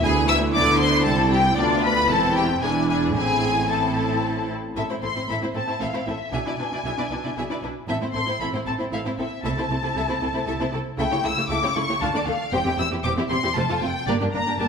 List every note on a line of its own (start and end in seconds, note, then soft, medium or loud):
0.03 0.53 D2 medium
0.03 0.53 B3 medium
0.03 1.04 E4 medium
0.03 0.28 G#4 medium
0.03 0.11 G#5 medium
0.28 0.37 E5 medium
0.28 0.36 E6 loud
0.54 1.06 D2 medium
0.54 1.06 D3 medium
0.54 1.05 B3 medium
0.54 0.80 D5 medium
0.54 0.79 D6 medium
0.79 1.06 C5 medium
0.79 1.05 C6 loud
1.05 1.58 C2 medium
1.05 1.58 C4 medium
1.05 1.57 E4 medium
1.05 1.32 A4 medium
1.05 1.31 A5 medium
1.31 1.40 G4 medium
1.31 1.57 G5 medium
1.57 2.06 D2 medium
1.57 2.06 B3 medium
1.57 1.83 D4 medium
1.57 2.06 F4 medium
1.57 1.84 D5 medium
1.84 2.10 B4 medium
1.84 2.09 B5 medium
2.09 2.61 E1 medium
2.09 2.61 E2 medium
2.09 2.61 C4 medium
2.09 2.61 E4 medium
2.09 2.36 A4 medium
2.09 2.36 A5 medium
2.36 2.44 G4 medium
2.36 2.62 G5 medium
2.62 3.15 E1 medium
2.62 3.14 E2 medium
2.62 3.16 D4 medium
2.62 3.14 E4 medium
2.62 2.70 G#4 medium
2.62 2.88 G#5 medium
2.88 3.14 G#4 medium
2.88 2.97 G#5 medium
3.15 4.56 A1 medium
3.15 4.56 A2 medium
3.15 3.68 C4 medium
3.15 3.68 E4 medium
3.15 3.68 G#4 medium
3.15 3.68 G#5 medium
3.69 4.54 C4 medium
3.69 4.54 E4 medium
3.69 4.49 A4 medium
3.69 4.50 A5 medium
4.76 4.82 A1 soft
4.76 4.81 A2 soft
4.76 4.81 C4 soft
4.76 4.82 E4 soft
4.76 4.81 A4 soft
4.76 4.81 E5 soft
4.76 4.86 E5 soft
4.89 4.95 A2 soft
4.89 4.95 C4 soft
4.89 4.95 E4 soft
4.89 4.95 C5 soft
5.02 5.08 A1 soft
5.02 5.08 A2 soft
5.02 5.08 C4 soft
5.02 5.08 E4 soft
5.02 5.08 A4 soft
5.02 5.28 C6 medium
5.15 5.21 A2 soft
5.15 5.20 C4 soft
5.15 5.20 E4 soft
5.15 5.21 E4 soft
5.15 5.21 C5 soft
5.28 5.34 A1 soft
5.28 5.34 A2 soft
5.28 5.34 C4 soft
5.28 5.34 E4 soft
5.28 5.34 A4 soft
5.28 5.34 E5 soft
5.28 5.37 B5 medium
5.41 5.47 A2 soft
5.41 5.46 C4 soft
5.41 5.47 E4 soft
5.41 5.47 C5 soft
5.54 5.60 A1 soft
5.54 5.60 A2 soft
5.54 5.59 C4 soft
5.54 5.60 C4 soft
5.54 5.59 E4 soft
5.54 5.60 A4 soft
5.54 5.81 A5 medium
5.67 5.73 A2 soft
5.67 5.72 C4 soft
5.67 5.72 E4 soft
5.67 5.73 E4 soft
5.67 5.73 C5 soft
5.80 5.86 A1 soft
5.80 5.85 A2 soft
5.80 5.86 C4 soft
5.80 5.86 E4 soft
5.80 5.86 A4 soft
5.80 5.86 E5 soft
5.80 6.07 F5 soft
5.93 5.99 A2 soft
5.93 5.99 C4 soft
5.93 5.99 E4 soft
5.93 5.99 C5 soft
6.06 6.12 A1 soft
6.06 6.12 A2 soft
6.06 6.12 C4 soft
6.06 6.12 E4 soft
6.06 6.12 A4 soft
6.06 6.33 E5 soft
6.32 6.38 B1 soft
6.32 6.38 B2 soft
6.32 6.38 D4 soft
6.32 6.38 E4 soft
6.32 6.38 G#4 soft
6.32 6.38 E5 soft
6.32 7.62 G#5 medium
6.45 6.51 B2 soft
6.45 6.51 D4 soft
6.45 6.51 E4 soft
6.45 6.52 D5 soft
6.58 6.64 B1 soft
6.58 6.64 B2 soft
6.58 6.64 D4 soft
6.58 6.65 D4 soft
6.58 6.64 E4 soft
6.58 6.65 B4 soft
6.71 6.76 B2 soft
6.71 6.77 D4 soft
6.71 6.77 E4 soft
6.71 6.78 E4 soft
6.71 6.78 D5 soft
6.84 6.90 B1 soft
6.84 6.89 B2 soft
6.84 6.90 D4 soft
6.84 6.90 E4 soft
6.84 6.90 G#4 soft
6.84 6.90 E5 soft
6.97 7.02 B2 soft
6.97 7.03 D4 soft
6.97 7.03 E4 soft
6.97 7.03 D5 soft
7.10 7.16 B1 soft
7.10 7.16 B2 soft
7.10 7.15 D4 soft
7.10 7.16 D4 soft
7.10 7.16 E4 soft
7.10 7.15 B4 soft
7.24 7.29 B2 soft
7.24 7.29 D4 soft
7.24 7.29 E4 soft
7.24 7.29 D5 soft
7.36 7.42 B1 soft
7.36 7.42 B2 soft
7.36 7.42 D4 soft
7.36 7.42 E4 soft
7.36 7.42 G#4 soft
7.36 7.43 E5 soft
7.49 7.55 B2 soft
7.49 7.55 D4 soft
7.49 7.55 E4 soft
7.49 7.55 D5 soft
7.63 7.68 B1 soft
7.63 7.68 B2 soft
7.63 7.68 D4 soft
7.63 7.68 E4 soft
7.63 7.68 B4 soft
7.88 7.93 A1 soft
7.88 7.93 A2 soft
7.88 7.94 C4 soft
7.88 7.94 E4 soft
7.88 7.93 A4 soft
7.88 7.93 E5 soft
7.88 7.97 E5 medium
8.01 8.06 A2 soft
8.01 8.07 C4 soft
8.01 8.06 E4 soft
8.01 8.07 E4 soft
8.01 8.07 C5 soft
8.13 8.20 A1 soft
8.13 8.19 A2 soft
8.13 8.19 C4 soft
8.13 8.20 C4 soft
8.13 8.20 E4 soft
8.13 8.19 A4 soft
8.13 8.39 C6 medium
8.27 8.32 A2 soft
8.27 8.32 C4 soft
8.27 8.32 E4 soft
8.27 8.32 C5 soft
8.40 8.45 A1 medium
8.40 8.45 A2 medium
8.40 8.46 C4 soft
8.40 8.46 E4 medium
8.40 8.45 A4 soft
8.40 8.45 E5 medium
8.40 8.48 B5 medium
8.53 8.58 A2 soft
8.53 8.58 C4 soft
8.53 8.58 E4 soft
8.53 8.59 E4 soft
8.53 8.58 C5 soft
8.66 8.72 A1 soft
8.66 8.71 A2 soft
8.66 8.71 C4 soft
8.66 8.71 E4 soft
8.66 8.71 A4 soft
8.66 8.74 A5 medium
8.79 8.84 A2 soft
8.79 8.84 C4 soft
8.79 8.84 E4 soft
8.79 8.84 C5 soft
8.92 8.98 A1 soft
8.92 8.97 A2 soft
8.92 8.97 C4 soft
8.92 8.97 E4 soft
8.92 8.98 A4 medium
8.92 8.97 E5 medium
8.92 9.01 F5 soft
9.05 9.10 A2 soft
9.05 9.10 C4 soft
9.05 9.10 E4 soft
9.05 9.11 E4 soft
9.05 9.10 C5 soft
9.18 9.24 A1 soft
9.18 9.23 A2 soft
9.18 9.23 C4 soft
9.18 9.24 C4 soft
9.18 9.24 E4 soft
9.18 9.24 A4 soft
9.18 9.45 E5 soft
9.44 9.49 C2 medium
9.44 9.49 C3 medium
9.44 9.49 A3 soft
9.44 9.49 E4 soft
9.44 9.50 A4 soft
9.44 9.50 E5 medium
9.44 10.71 A5 medium
9.57 9.62 C3 soft
9.57 9.62 A3 soft
9.57 9.62 E4 soft
9.57 9.63 E4 soft
9.57 9.63 C5 soft
9.70 9.75 C2 soft
9.70 9.75 C3 soft
9.70 9.75 A3 soft
9.70 9.76 C4 soft
9.70 9.75 E4 soft
9.70 9.76 A4 soft
9.83 9.88 C3 soft
9.83 9.88 A3 soft
9.83 9.88 E4 soft
9.83 9.88 C5 soft
9.95 10.01 C2 medium
9.95 10.01 C3 medium
9.95 10.01 A3 medium
9.95 10.01 E4 medium
9.95 10.01 A4 soft
9.95 10.01 E5 medium
10.08 10.13 C3 soft
10.08 10.14 A3 soft
10.08 10.14 E4 soft
10.08 10.14 C5 soft
10.21 10.27 C2 soft
10.21 10.26 C3 soft
10.21 10.27 A3 soft
10.21 10.27 C4 soft
10.21 10.27 E4 soft
10.21 10.27 A4 soft
10.33 10.39 C3 soft
10.33 10.40 A3 soft
10.33 10.39 E4 soft
10.33 10.40 E4 soft
10.33 10.39 C5 soft
10.47 10.52 C2 medium
10.47 10.52 C3 medium
10.47 10.52 A3 medium
10.47 10.52 E4 medium
10.47 10.52 A4 medium
10.47 10.52 E5 medium
10.59 10.65 C3 soft
10.59 10.65 A3 soft
10.59 10.65 E4 soft
10.59 10.65 C5 soft
10.72 10.78 C2 soft
10.72 10.77 C3 soft
10.72 10.78 A3 soft
10.72 10.78 C4 soft
10.72 10.78 E4 soft
10.72 10.78 A4 soft
10.98 11.03 C#2 medium
10.98 11.03 C#3 medium
10.98 11.03 A3 medium
10.98 11.03 E4 medium
10.98 11.04 A4 medium
10.98 11.04 E5 medium
10.98 11.22 G5 medium
11.11 11.16 C#3 soft
11.11 11.16 A3 soft
11.11 11.16 E4 soft
11.11 11.16 G4 soft
11.11 11.16 C#5 soft
11.23 11.29 C#2 soft
11.23 11.29 C#3 soft
11.23 11.29 A3 soft
11.23 11.29 E4 soft
11.23 11.29 A4 soft
11.23 11.50 E6 medium
11.37 11.42 C#3 soft
11.37 11.42 A3 soft
11.37 11.42 E4 soft
11.37 11.42 G4 soft
11.37 11.42 C#5 soft
11.49 11.55 C#2 medium
11.49 11.55 C#3 medium
11.49 11.55 A3 medium
11.49 11.55 E4 medium
11.49 11.55 A4 medium
11.49 11.55 E5 medium
11.49 11.75 D6 medium
11.62 11.67 C#3 soft
11.62 11.68 A3 soft
11.62 11.68 E4 soft
11.62 11.68 G4 medium
11.62 11.68 C#5 soft
11.75 11.81 C#2 soft
11.75 11.81 C#3 soft
11.75 11.81 A3 soft
11.75 11.81 E4 soft
11.75 11.80 A4 soft
11.75 12.01 C#6 medium
11.88 11.93 C#3 soft
11.88 11.93 A3 soft
11.88 11.93 E4 soft
11.88 11.94 G4 soft
11.88 11.94 C#5 soft
12.01 12.06 D2 medium
12.01 12.06 D3 medium
12.01 12.07 A3 medium
12.01 12.06 D4 medium
12.01 12.06 F4 medium
12.01 12.06 F5 medium
12.01 12.27 A5 medium
12.14 12.19 D3 soft
12.14 12.19 A3 soft
12.14 12.19 D4 medium
12.14 12.20 D4 soft
12.14 12.20 D5 soft
12.26 12.32 D2 soft
12.26 12.32 D3 soft
12.26 12.32 A3 soft
12.26 12.33 A3 soft
12.26 12.32 D4 soft
12.26 12.33 A4 soft
12.26 12.53 F5 medium
12.52 12.58 E1 medium
12.52 12.58 E2 medium
12.52 12.58 C4 medium
12.52 12.58 G4 medium
12.52 12.58 C5 medium
12.52 12.78 G5 medium
12.65 12.71 E2 soft
12.65 12.71 C4 soft
12.65 12.71 E4 soft
12.65 12.71 G4 soft
12.78 12.83 E1 soft
12.78 12.84 E2 soft
12.78 12.83 C4 soft
12.78 12.84 C4 soft
12.78 12.84 E4 soft
12.78 12.83 G4 soft
12.78 12.87 E6 medium
12.91 12.97 E2 soft
12.91 12.97 C4 soft
12.91 12.97 E4 soft
12.91 12.97 G4 soft
13.03 13.09 E1 medium
13.03 13.09 E2 medium
13.03 13.10 C4 medium
13.03 13.09 G4 medium
13.03 13.10 G4 medium
13.03 13.10 C5 medium
13.03 13.11 D6 medium
13.17 13.23 E2 soft
13.17 13.22 C4 soft
13.17 13.23 E4 soft
13.17 13.22 G4 soft
13.17 13.23 G4 soft
13.29 13.35 E1 soft
13.29 13.35 E2 soft
13.29 13.35 C4 soft
13.29 13.35 E4 soft
13.29 13.35 G4 soft
13.29 13.55 C6 medium
13.43 13.48 E2 soft
13.43 13.49 C4 soft
13.43 13.48 E4 soft
13.43 13.48 G4 soft
13.43 13.49 G4 medium
13.55 13.61 F1 medium
13.55 13.61 F2 medium
13.55 13.62 A3 medium
13.55 13.62 F4 medium
13.55 13.61 A4 medium
13.55 13.61 C5 medium
13.55 13.81 A5 medium
13.69 13.74 F2 soft
13.69 13.74 A3 medium
13.69 13.74 F4 medium
13.69 13.74 F4 soft
13.69 13.74 A4 soft
13.81 13.87 F1 soft
13.81 13.88 F2 soft
13.81 13.87 A3 soft
13.81 13.87 C4 soft
13.81 13.87 F4 soft
13.81 13.88 F4 soft
13.81 14.07 G5 medium
14.06 14.13 G1 medium
14.06 14.13 G2 medium
14.06 14.13 A#3 medium
14.06 14.13 D4 medium
14.06 14.13 G4 medium
14.06 14.13 A#4 medium
14.06 14.14 D5 medium
14.20 14.26 G2 soft
14.20 14.26 A#3 soft
14.20 14.26 D4 soft
14.20 14.26 G4 soft
14.33 14.39 G1 soft
14.33 14.39 G2 soft
14.33 14.39 A#3 soft
14.33 14.39 D4 soft
14.33 14.59 A#5 medium
14.46 14.52 G2 soft
14.46 14.52 A#3 soft
14.46 14.52 D4 soft
14.46 14.52 G4 soft
14.59 14.65 G1 medium
14.59 14.65 G2 medium
14.59 14.65 A#3 medium
14.59 14.65 D4 medium
14.59 14.65 G4 medium
14.59 14.65 A#4 medium
14.59 14.68 A5 medium